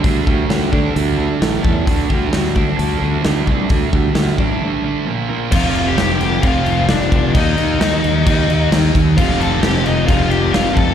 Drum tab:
CC |----------------|----------------|----------------|x-x-x-x-x-x-x-x-|
HH |o---o---o---o---|o---o---o---o---|o---o-----------|----------------|
SD |----o-------o---|----oo------o---|----oo----------|----o-------o---|
BD |o-o---o-------o-|o-o---o-------o-|o-o---o---------|o-------o-----o-|

CC |x-x-x-x-x-x-x-x-|x-x-x-x-x-x-x-x-|
HH |----------------|----------------|
SD |----o-------o---|----o-------o---|
BD |o-------o-----o-|o-------o-----o-|